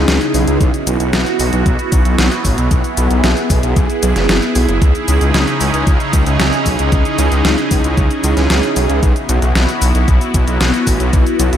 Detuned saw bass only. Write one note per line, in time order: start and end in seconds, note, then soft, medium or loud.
0.08 0.19 C#2 loud
0.34 0.45 B1 medium
0.47 0.58 C#2 medium
0.61 0.71 B1 loud
0.87 0.98 B1 medium
1.00 1.11 B1 medium
1.13 1.24 B1 loud
1.40 1.50 B1 loud
1.53 1.64 B1 medium
1.66 1.77 B1 loud
1.92 2.03 B1 loud
2.05 2.16 B1 medium
2.19 2.29 B1 loud
2.45 2.56 A1 medium
2.58 2.69 B1 medium
2.71 2.82 B1 loud
2.97 3.08 B1 loud
3.11 3.21 B1 medium
3.24 3.34 B1 loud
3.50 3.61 B1 medium
3.63 3.74 B1 medium
3.76 3.87 B1 loud
4.03 4.13 B1 medium
4.16 4.27 F#1 medium
4.29 4.40 F#1 loud
4.55 4.66 B1 medium
4.69 4.79 F#1 medium
4.82 4.92 C#2 loud
5.08 5.19 C#2 medium
5.21 5.32 C#2 medium
5.34 5.45 C#2 loud
5.61 5.71 C#2 medium
5.74 5.85 C#2 medium
5.87 5.98 C#2 loud
6.13 6.24 C#2 loud
6.26 6.37 C#2 medium
6.40 6.50 C#2 medium
6.66 6.77 B1 medium
6.79 6.90 C#2 medium
6.92 7.03 C#2 loud
7.18 7.29 C#2 medium
7.32 7.42 C#2 medium
7.45 7.56 C#2 loud
7.71 7.82 C#2 medium
7.84 7.95 C#2 medium
7.97 8.08 C#2 loud
8.24 8.35 C#2 medium
8.37 8.48 C#2 medium
8.50 8.61 C#2 medium
8.76 8.87 B1 medium
8.90 9.00 C#2 medium
9.03 9.13 B1 loud
9.29 9.40 B1 medium
9.42 9.53 B1 medium
9.55 9.66 B1 loud
9.82 9.92 B1 medium
9.95 10.06 B1 medium
10.08 10.19 B1 loud
10.34 10.45 B1 medium
10.47 10.58 B1 medium
10.61 10.71 B1 loud
10.87 10.98 A1 medium
11.00 11.11 B1 medium
11.13 11.24 B1 loud
11.40 11.50 B1 medium
11.53 11.57 B1 medium